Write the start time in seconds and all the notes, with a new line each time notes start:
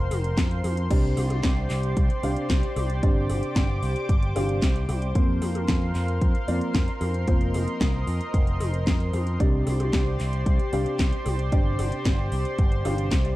Already playing: A#4 C5 F5 C6
0.11 F1, open hi-hat, high tom
0.24 closed hi-hat
0.37 F2, kick, snare, clap, closed hi-hat
0.51 closed hi-hat
0.64 F2, open hi-hat, high tom
0.77 closed hi-hat
0.90 C2 C3 C4 D4 G4 D5, kick, closed hi-hat, crash
1.17 C2, open hi-hat, high tom
1.30 closed hi-hat, high tom
1.43 C2, kick, snare, clap, closed hi-hat
1.70 C2, clap, open hi-hat
1.83 closed hi-hat
1.97 C2, kick, closed hi-hat
2.10 closed hi-hat
2.23 C2 C3 C4 D4 G4 F5, open hi-hat
2.36 closed hi-hat
2.50 C2, kick, snare, clap, closed hi-hat
2.63 closed hi-hat
2.76 C2, open hi-hat, high tom
2.90 closed hi-hat
3.03 G1 C3 C4 D4 G4 D5 D6, kick, closed hi-hat
3.30 G1, open hi-hat, high tom
3.43 closed hi-hat
3.56 G1, kick, snare, clap, closed hi-hat
3.83 C2, open hi-hat
3.96 closed hi-hat
4.09 G1, kick, closed hi-hat
4.23 closed hi-hat
4.36 G1 C3 C4 D4 G4 F5, open hi-hat, high tom
4.49 closed hi-hat
4.62 C2, kick, snare, clap, closed hi-hat
4.76 closed hi-hat
4.89 C2, open hi-hat, high tom
5.02 closed hi-hat
5.15 F2 F3 A#3 C4 F4 A#4 C5 F5 C6, kick, closed hi-hat
5.42 F2, open hi-hat, high tom
5.55 closed hi-hat, high tom
5.68 F2, kick, snare, clap, closed hi-hat
5.95 F2, clap, open hi-hat
6.08 closed hi-hat
6.21 F2, kick, closed hi-hat
6.35 closed hi-hat
6.48 F2 F3 A#3 C4 F4 D5, open hi-hat
6.61 closed hi-hat
6.75 F2, kick, snare, clap, closed hi-hat
6.88 closed hi-hat
7.01 F2, open hi-hat, high tom
7.14 closed hi-hat
7.27 F1 F3 A#3 C4 F4 C5 D#5, kick, closed hi-hat
7.41 closed hi-hat
7.54 F1, open hi-hat, high tom
7.68 closed hi-hat
7.81 C2, kick, snare, clap, closed hi-hat
8.07 F2, open hi-hat
8.21 closed hi-hat
8.34 F1, kick, closed hi-hat
8.47 closed hi-hat
8.60 F1, open hi-hat, high tom
8.74 closed hi-hat
8.87 F2, kick, snare, clap, closed hi-hat
9.00 closed hi-hat
9.13 F2, open hi-hat, high tom
9.27 closed hi-hat
9.40 C2 C3 C4 D4 G4 C5 D5 C6, kick, closed hi-hat
9.67 C2, open hi-hat, high tom
9.80 closed hi-hat, high tom
9.93 C2, kick, snare, clap, closed hi-hat
10.20 C2, clap, open hi-hat
10.33 closed hi-hat
10.46 C2, kick, closed hi-hat
10.59 closed hi-hat
10.73 C2 C3 C4 D4 G4 F5, open hi-hat
10.86 closed hi-hat
10.99 C2, kick, snare, clap, closed hi-hat
11.13 closed hi-hat
11.26 C2, open hi-hat, high tom
11.39 closed hi-hat
11.52 G1 C3 C4 D4 G4 D5, kick, closed hi-hat
11.79 G1, open hi-hat, high tom
11.92 closed hi-hat
12.05 G1, kick, snare, clap, closed hi-hat
12.32 C2, open hi-hat
12.45 closed hi-hat
12.58 G1, kick, closed hi-hat
12.72 closed hi-hat
12.85 G1 C3 C4 D4 G4 F5, open hi-hat, high tom
12.98 closed hi-hat
13.11 C2, kick, snare, clap, closed hi-hat
13.25 closed hi-hat